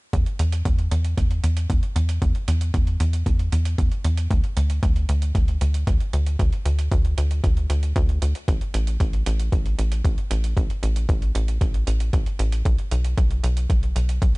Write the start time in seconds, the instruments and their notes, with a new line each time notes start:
0.13 analog synth bass E2, kick, closed hi-hat
0.26 closed hi-hat
0.39 analog synth bass E2, closed hi-hat
0.52 closed hi-hat
0.65 analog synth bass E2, kick, closed hi-hat
0.78 closed hi-hat
0.91 analog synth bass E2, closed hi-hat
1.05 closed hi-hat
1.18 analog synth bass E2, kick, closed hi-hat
1.31 closed hi-hat
1.44 analog synth bass E2, closed hi-hat
1.57 closed hi-hat
1.70 analog synth bass E2, kick, closed hi-hat
1.83 closed hi-hat
1.96 analog synth bass E2, closed hi-hat
2.09 closed hi-hat
2.22 analog synth bass E2, kick, closed hi-hat
2.35 closed hi-hat
2.48 analog synth bass E2, closed hi-hat
2.61 closed hi-hat
2.74 analog synth bass E2, kick, closed hi-hat
2.87 closed hi-hat
3.00 analog synth bass E2, closed hi-hat
3.13 closed hi-hat
3.26 analog synth bass E2, kick, closed hi-hat
3.39 closed hi-hat
3.52 analog synth bass E2, closed hi-hat
3.65 closed hi-hat
3.78 analog synth bass E2, kick, closed hi-hat
3.92 closed hi-hat
4.04 analog synth bass E2, closed hi-hat
4.17 closed hi-hat
4.31 analog synth bass D2, kick, closed hi-hat
4.44 closed hi-hat
4.57 analog synth bass D2, closed hi-hat
4.70 closed hi-hat
4.83 analog synth bass D2, kick, closed hi-hat
4.96 closed hi-hat
5.09 analog synth bass D2, closed hi-hat
5.22 closed hi-hat
5.35 analog synth bass D2, kick, closed hi-hat
5.48 closed hi-hat
5.61 analog synth bass D2, closed hi-hat
5.74 closed hi-hat
5.87 analog synth bass D2, kick, closed hi-hat
6.00 closed hi-hat
6.13 analog synth bass D2, closed hi-hat
6.26 closed hi-hat
6.39 analog synth bass D2, kick, closed hi-hat
6.52 closed hi-hat
6.65 analog synth bass D2, closed hi-hat
6.79 closed hi-hat
6.92 analog synth bass D2, kick, closed hi-hat
7.05 closed hi-hat
7.18 analog synth bass D2, closed hi-hat
7.31 closed hi-hat
7.44 analog synth bass D2, kick, closed hi-hat
7.57 closed hi-hat
7.70 analog synth bass D2, closed hi-hat
7.83 closed hi-hat
7.96 analog synth bass D2, kick, closed hi-hat
8.09 closed hi-hat
8.22 analog synth bass D2, closed hi-hat
8.35 closed hi-hat
8.48 analog synth bass A1, kick, closed hi-hat
8.61 closed hi-hat
8.74 analog synth bass A1, closed hi-hat
8.87 closed hi-hat
9.00 analog synth bass A1, kick, closed hi-hat
9.13 closed hi-hat
9.26 analog synth bass A1, closed hi-hat
9.39 closed hi-hat
9.52 analog synth bass A1, kick, closed hi-hat
9.66 closed hi-hat
9.79 analog synth bass A1, closed hi-hat
9.92 closed hi-hat
10.05 analog synth bass A1, kick, closed hi-hat
10.18 closed hi-hat
10.31 analog synth bass A1, closed hi-hat
10.44 closed hi-hat
10.57 analog synth bass A1, kick, closed hi-hat
10.70 closed hi-hat
10.83 analog synth bass A1, closed hi-hat
10.96 closed hi-hat
11.09 analog synth bass A1, kick, closed hi-hat
11.22 closed hi-hat
11.35 analog synth bass A1, closed hi-hat
11.48 closed hi-hat
11.61 analog synth bass A1, kick, closed hi-hat
11.74 closed hi-hat
11.87 analog synth bass A1, closed hi-hat
12.00 closed hi-hat
12.13 analog synth bass A1, kick, closed hi-hat
12.26 closed hi-hat
12.39 analog synth bass A1, closed hi-hat
12.52 closed hi-hat
12.65 analog synth bass B1, kick, closed hi-hat
12.78 closed hi-hat
12.91 analog synth bass B1, closed hi-hat
13.04 closed hi-hat
13.18 analog synth bass B1, kick, closed hi-hat
13.31 closed hi-hat
13.44 analog synth bass B1, closed hi-hat
13.57 closed hi-hat
13.70 analog synth bass B1, kick, closed hi-hat
13.83 closed hi-hat
13.96 analog synth bass B1, closed hi-hat
14.09 closed hi-hat
14.22 analog synth bass B1, kick, closed hi-hat